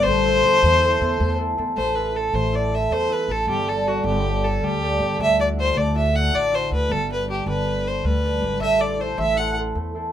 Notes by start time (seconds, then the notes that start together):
Already playing: D3 G3 D4 G4 A4 B4
0.03 A1 A3 C5
0.25 E4 A4 C5
0.44 E2 E4 A4 C5
0.63 E2 E3
0.82 E4 A4 C5
1.00 E2 E4 A4 C5
1.20 E2 A3
1.38 E4 A4 C5
1.57 E2 E4 A4 C5
1.77 A1 A3 C5
1.95 E4 A4 B4 C5
2.14 E4 A4 C5
2.33 A1 E3 C5
2.52 E4 A4 C5 D5
2.71 E4 A4 C5 E5
2.90 E2 A3 C5
3.10 E4 A4 B4 C5
3.28 A1 E4 A4 C5
3.47 G1 G3 G4
3.67 G4 A4 D5
3.86 F#4 G4 A4 D5
4.03 G1 D3 G4
4.24 G4 A4 D5
4.43 G4 A4 D5
4.54 A4
4.61 D2 G3 G4
4.81 G4 A4 D5
5.00 G1 G4 A4 D5
5.18 D2 D3 E5
5.38 D4 E4 F#4 D5
5.56 D4 E4 F#4 C5
5.75 D2 A3 D5
5.94 D4 E4 F#4 E5
6.12 D4 E4 F#4 F#5
6.32 A1 D3 D5
6.51 D4 E4 F#4
6.55 C5
6.70 D2 D4 E4 F#4 B4
6.89 G1 G3 A4
7.08 D4 G4 B4
7.27 D4 G4 B4
7.46 G1 D3 B4
7.65 D4 G4 B4
7.84 D4 G4 B4 C5
7.98 C5
8.04 D2 G3 B4
8.22 D4 G4 B4
8.41 G#1 D4 G4 B4
8.61 A1 A3 E5
8.79 E4 A4 C5 D5
8.99 E4 A4 C5
9.18 A1 E3 E5
9.36 E4 A4 C5 F#5
9.56 E4 A4 C5
9.75 E2 A3
9.95 E4 A4 C5